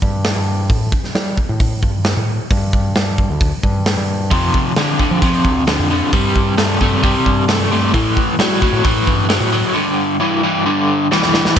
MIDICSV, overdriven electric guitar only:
0, 0, Header, 1, 2, 480
1, 0, Start_track
1, 0, Tempo, 452489
1, 741, Time_signature, 4, 2, 24, 8
1, 12297, End_track
2, 0, Start_track
2, 0, Title_t, "Overdriven electric guitar"
2, 0, Program_c, 0, 29
2, 4576, Note_on_c, 0, 41, 85
2, 4582, Note_on_c, 0, 48, 90
2, 5007, Note_off_c, 0, 41, 0
2, 5010, Note_off_c, 0, 48, 0
2, 5066, Note_on_c, 0, 41, 84
2, 5069, Note_on_c, 0, 50, 92
2, 5276, Note_off_c, 0, 41, 0
2, 5278, Note_off_c, 0, 50, 0
2, 5298, Note_on_c, 0, 41, 67
2, 5301, Note_on_c, 0, 50, 83
2, 5513, Note_off_c, 0, 41, 0
2, 5514, Note_off_c, 0, 50, 0
2, 5540, Note_on_c, 0, 41, 79
2, 5543, Note_on_c, 0, 48, 90
2, 5969, Note_off_c, 0, 41, 0
2, 5971, Note_off_c, 0, 48, 0
2, 6017, Note_on_c, 0, 41, 84
2, 6022, Note_on_c, 0, 50, 92
2, 6232, Note_off_c, 0, 41, 0
2, 6235, Note_off_c, 0, 50, 0
2, 6259, Note_on_c, 0, 41, 72
2, 6268, Note_on_c, 0, 50, 78
2, 6473, Note_off_c, 0, 41, 0
2, 6477, Note_off_c, 0, 50, 0
2, 6503, Note_on_c, 0, 48, 76
2, 6511, Note_on_c, 0, 55, 92
2, 6931, Note_off_c, 0, 48, 0
2, 6935, Note_off_c, 0, 55, 0
2, 6976, Note_on_c, 0, 48, 89
2, 6982, Note_on_c, 0, 57, 94
2, 7191, Note_off_c, 0, 48, 0
2, 7195, Note_off_c, 0, 57, 0
2, 7227, Note_on_c, 0, 48, 74
2, 7238, Note_on_c, 0, 57, 82
2, 7437, Note_off_c, 0, 48, 0
2, 7442, Note_off_c, 0, 57, 0
2, 7462, Note_on_c, 0, 48, 77
2, 7465, Note_on_c, 0, 55, 86
2, 7891, Note_off_c, 0, 48, 0
2, 7892, Note_off_c, 0, 55, 0
2, 7948, Note_on_c, 0, 48, 79
2, 7952, Note_on_c, 0, 57, 94
2, 8158, Note_off_c, 0, 48, 0
2, 8160, Note_off_c, 0, 57, 0
2, 8187, Note_on_c, 0, 48, 69
2, 8193, Note_on_c, 0, 57, 77
2, 8398, Note_off_c, 0, 48, 0
2, 8401, Note_off_c, 0, 57, 0
2, 8421, Note_on_c, 0, 45, 84
2, 8425, Note_on_c, 0, 52, 86
2, 8851, Note_off_c, 0, 45, 0
2, 8853, Note_off_c, 0, 52, 0
2, 8900, Note_on_c, 0, 45, 81
2, 8904, Note_on_c, 0, 54, 109
2, 9115, Note_off_c, 0, 45, 0
2, 9117, Note_off_c, 0, 54, 0
2, 9134, Note_on_c, 0, 45, 75
2, 9136, Note_on_c, 0, 54, 83
2, 9352, Note_off_c, 0, 45, 0
2, 9353, Note_off_c, 0, 54, 0
2, 9372, Note_on_c, 0, 45, 78
2, 9379, Note_on_c, 0, 52, 90
2, 9808, Note_off_c, 0, 45, 0
2, 9811, Note_off_c, 0, 52, 0
2, 9853, Note_on_c, 0, 45, 81
2, 9858, Note_on_c, 0, 54, 95
2, 10073, Note_off_c, 0, 45, 0
2, 10075, Note_off_c, 0, 54, 0
2, 10098, Note_on_c, 0, 45, 70
2, 10106, Note_on_c, 0, 54, 77
2, 10315, Note_off_c, 0, 45, 0
2, 10319, Note_off_c, 0, 54, 0
2, 10333, Note_on_c, 0, 43, 83
2, 10339, Note_on_c, 0, 50, 84
2, 10770, Note_off_c, 0, 43, 0
2, 10773, Note_off_c, 0, 50, 0
2, 10818, Note_on_c, 0, 43, 84
2, 10824, Note_on_c, 0, 52, 97
2, 11036, Note_off_c, 0, 43, 0
2, 11039, Note_off_c, 0, 52, 0
2, 11066, Note_on_c, 0, 43, 71
2, 11072, Note_on_c, 0, 52, 85
2, 11281, Note_off_c, 0, 43, 0
2, 11284, Note_off_c, 0, 52, 0
2, 11303, Note_on_c, 0, 43, 81
2, 11307, Note_on_c, 0, 50, 87
2, 11736, Note_off_c, 0, 43, 0
2, 11738, Note_off_c, 0, 50, 0
2, 11789, Note_on_c, 0, 43, 80
2, 11797, Note_on_c, 0, 52, 93
2, 12003, Note_off_c, 0, 43, 0
2, 12007, Note_off_c, 0, 52, 0
2, 12023, Note_on_c, 0, 43, 69
2, 12031, Note_on_c, 0, 52, 77
2, 12240, Note_off_c, 0, 43, 0
2, 12244, Note_off_c, 0, 52, 0
2, 12263, Note_on_c, 0, 45, 89
2, 12297, Note_off_c, 0, 45, 0
2, 12297, End_track
0, 0, End_of_file